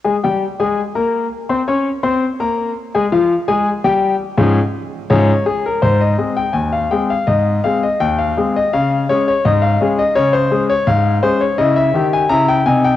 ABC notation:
X:1
M:2/4
L:1/16
Q:1/4=83
K:Ab
V:1 name="Grand piano"
[A,Aa] [G,Gg]2 [A,Aa]2 [B,Bb]3 | [Ccc'] [Ddd']2 [Ccc']2 [B,Bb]3 | [A,Aa] [F,Ff]2 [A,Aa]2 [G,Gg]3 | [A,,F,DA]2 z2 [A,,F,DAd]2 A B |
c e2 g a f g f | e2 f e g f2 e | f2 d d e f2 e | d c2 d f2 c d |
e _f2 a b g a g |]
V:2 name="Grand piano"
z8 | z8 | z8 | z8 |
A,,2 [A,CA]2 E,,2 [A,CA]2 | A,,2 [A,CA]2 E,,2 [A,CA]2 | D,2 [A,DA]2 A,,2 [A,DA]2 | D,2 [A,DA]2 A,,2 [A,DA]2 |
[D,_F]2 [E,G]2 [D,F]2 [C,E]2 |]